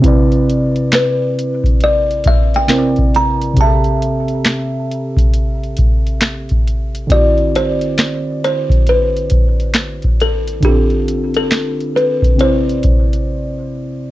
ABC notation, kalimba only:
X:1
M:4/4
L:1/16
Q:"Swing 16ths" 1/4=68
K:C
V:1 name="Kalimba"
z4 B4 d2 e g3 _b2 | a12- a2 z2 | d2 c4 c2 B4 z2 A2 | G3 A3 B2 c6 z2 |]